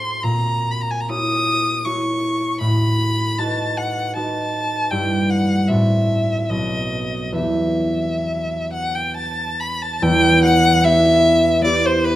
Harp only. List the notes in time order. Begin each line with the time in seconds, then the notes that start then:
Already playing: A2 C4 F#4 A4
0.23 A#2
1.09 E4 F#4 C#5
1.85 E4 F#4 C#5
2.61 A2
3.38 D#4 F#4 B4
4.16 D#4 F#4 B4
4.91 G2 E4 G4 B4
5.69 A2 C4 F#4 A4
6.49 B1 B3 F#4 A4
7.32 E2 B3 E4
7.37 G4
10.02 E2
10.84 B3 E4 G4
11.61 B3 E4
11.66 G4